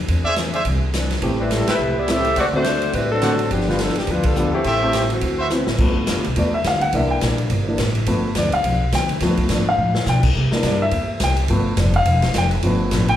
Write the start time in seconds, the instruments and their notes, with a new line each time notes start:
0.08 upright bass E2, steel-string acoustic guitar E3 C4 D4 G#4, kick, ride
0.25 trumpet section G#4 C5 D5 E5
0.36 steel-string acoustic guitar E3 C4 D4 G#4, snare, hi-hat pedal, ride
0.54 trumpet section G#4 C5 D5 E5, ride
0.65 upright bass C2, steel-string acoustic guitar E3 C4 D4 G#4, kick, ride
0.94 steel-string acoustic guitar E3 C4 D4 G#4, snare, hi-hat pedal, ride
1.10 snare, ride
1.22 upright bass A1, steel-string acoustic guitar A2 G3 C4 E4, grand piano E3 A3 C4 G4, kick, ride
1.40 saxophone section G3 C4 E4 B4
1.51 steel-string acoustic guitar A2 G3 C4 E4, saxophone section G3 C4 E4 A4, snare, hi-hat pedal, ride
1.67 saxophone section A3 E4 G4 B4, trumpet section A4 C5 E5 G5, muted upright bass stroke, snare, ride
1.79 upright bass C2, steel-string acoustic guitar A2 G3 C4 E4
1.98 saxophone section B3 E4 G4 D5
2.08 steel-string acoustic guitar A2 G3 C4 E4, grand piano E3 A3 C4 E4, saxophone section G4 E5, snare, hi-hat pedal, ride
2.12 saxophone section C4 A4
2.25 ride
2.36 upright bass D2, steel-string acoustic guitar D3 A3 C4 F#4, saxophone section C4 F#4 A4 D5, trumpet section A4 C5 D5 F#5, kick, ride
2.53 grand piano D3 A3 C4 F#4, saxophone section A3 D4 F#4 C5
2.64 steel-string acoustic guitar D3 A3 C4 F#4, snare, hi-hat pedal, ride
2.82 ride
2.93 upright bass A1, steel-string acoustic guitar D3 A3 C4 F#4, saxophone section G3 C4 E4 B4, kick, ride
3.12 saxophone section F#3 C4 D4 A4
3.22 grand piano D3 A3 C4 F#4, steel-string acoustic guitar D3 A3 C4 F#4, trumpet section A4 C5 D5 F#5, snare, hi-hat pedal, ride
3.39 ride
3.51 upright bass G1, steel-string acoustic guitar G2 F3 B3 D4, saxophone section F3 B3 D4 G4, kick, ride
3.61 snare
3.68 grand piano D3 G3 B3 F4, saxophone section G3 D4 F4 B4, snare
3.79 steel-string acoustic guitar G2 F3 B3 D4, saxophone section F3 B3 D4 A4, snare, hi-hat pedal, ride
3.89 snare
3.95 saxophone section F3 B3 D4 G4, muted upright bass stroke, snare, ride
4.07 upright bass D2, steel-string acoustic guitar G2 F3 B3 D4, saxophone section G3 D4 F4 B4, kick, ride
4.23 saxophone section G3 D4 F4 A4, kick, ride
4.35 steel-string acoustic guitar G2 F3 B3 D4, grand piano D3 G3 B3 F4, hi-hat pedal
4.53 saxophone section E3 A3 C4 G4, muted upright bass stroke
4.64 upright bass A1, steel-string acoustic guitar A2 G3 C4 E4, trumpet section G4 A4 C5 E5, kick, ride
4.82 grand piano E3 A3 C4 G4, saxophone section E3 A3 C4 G4
4.93 steel-string acoustic guitar A2 G3 C4 E4, snare, hi-hat pedal, ride
5.10 saxophone section E3 A3 C4 F#4, ride
5.21 upright bass D2, steel-string acoustic guitar D3 C4 F#4, kick, ride
5.25 steel-string acoustic guitar B4
5.39 trumpet section F#4 B4 C5 E5
5.50 steel-string acoustic guitar D3 C4 F#4 B4, grand piano E3 B3 C4 E4, snare, hi-hat pedal
5.67 upright bass A1, snare
5.78 upright bass G2, grand piano F3 A3 B3, steel-string acoustic guitar G3 D4 F4 B4, kick, crash
5.96 muted upright bass stroke
6.07 upright bass F2, steel-string acoustic guitar G3 D4 F4 B4, kick, snare, hi-hat pedal, ride
6.17 upright bass D2
6.24 upright bass B1, ride
6.36 upright bass E2, grand piano F3 A3 B3 D5, steel-string acoustic guitar G3 D4 F4 B4, kick, ride
6.54 grand piano E5
6.64 upright bass D2, steel-string acoustic guitar G3 D4 F4 B4, grand piano F5, kick, snare, hi-hat pedal, ride
6.81 grand piano F#5, ride
6.93 upright bass C2, steel-string acoustic guitar C3 G3 A#3 E4, grand piano E3 A#3 D4 E5, kick, ride
7.11 grand piano G5
7.21 upright bass A#1, steel-string acoustic guitar C3 G3 A#3 E4, kick, snare, hi-hat pedal, ride
7.38 ride
7.50 upright bass G1, steel-string acoustic guitar C3 G3 A#3 E4, kick, ride
7.68 grand piano E3 A#3 D4
7.78 upright bass A1, steel-string acoustic guitar C3 G3 A#3 E4, kick, snare, hi-hat pedal, ride
7.95 ride
8.06 upright bass G1, steel-string acoustic guitar G2 F3 B3 D4, grand piano F3 A3 B3, kick, ride
8.35 upright bass D2, steel-string acoustic guitar G2 F3 B3 D4, grand piano D5, kick, snare, hi-hat pedal, ride
8.52 grand piano F5, muted upright bass stroke, ride
8.64 upright bass B1, steel-string acoustic guitar G2 F3 B3 D4, kick, ride
8.92 upright bass D2, steel-string acoustic guitar G2 F3 B3 D4, grand piano G5, kick, snare, hi-hat pedal, ride
9.09 ride
9.20 upright bass G2, steel-string acoustic guitar G2 F3 B3 D4, grand piano F3 A3 B3, kick, snare, ride
9.37 muted upright bass stroke, kick, ride
9.49 steel-string acoustic guitar G2 F3 B3 D4, upright bass G#2, snare, hi-hat pedal, ride
9.53 grand piano D5
9.69 grand piano F5
9.78 steel-string acoustic guitar G2 F3 B3 D4, upright bass A2
9.95 snare
10.06 steel-string acoustic guitar G2 F3 B3 D4, upright bass B2, grand piano G5, snare, hi-hat pedal
10.23 kick, crash
10.35 steel-string acoustic guitar C3 G3 A#3 E4, upright bass C3, kick
10.52 grand piano E3 A#3 D4, snare
10.63 upright bass G2, steel-string acoustic guitar C3 G3 A#3 E4, grand piano D5, kick, snare, hi-hat pedal, ride
10.82 grand piano E5
10.91 upright bass E2, steel-string acoustic guitar C3 G3 A#3 E4, kick, ride
11.20 upright bass C2, steel-string acoustic guitar C3 G3 A#3 E4, grand piano G5, kick, snare, hi-hat pedal, ride
11.36 ride
11.48 upright bass G1, steel-string acoustic guitar G2 F3 B3 D4, grand piano F3 A3 B3, kick, ride
11.77 upright bass F1, steel-string acoustic guitar G2 F3 B3 D4, grand piano D5, kick, snare, hi-hat pedal, ride
11.94 grand piano F5, ride
12.05 upright bass E1, steel-string acoustic guitar G2 F3 B3 D4, kick, ride
12.22 snare, ride
12.34 upright bass F1, steel-string acoustic guitar G2 F3 B3 D4, kick, snare, hi-hat pedal, ride
12.38 grand piano G5
12.51 ride
12.63 upright bass G1, steel-string acoustic guitar G2 F3 B3 D4, grand piano F3 A3 B3, kick, ride
12.91 upright bass A1, steel-string acoustic guitar G2 F3 B3 D4, kick, snare, hi-hat pedal, ride
13.08 grand piano G5, ride